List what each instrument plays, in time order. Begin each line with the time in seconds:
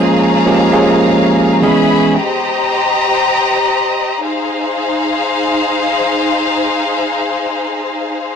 Already playing: tine electric piano F3 G#3 A#3 C#4 G#4 F5, string section G#4 C#5 F5 A#5
0.46 tine electric piano F3 G#3 A#3 C#4 G4
0.72 tine electric piano F3 G#3 A#3 C#4 G#4
1.62 tine electric piano E3 G#3 B3 C#4 G#4, string section G#4 C#5 E5 B5
2.15 string section G4 C5 D#5 A#5
4.23 string section D#4 G#4 C5 F5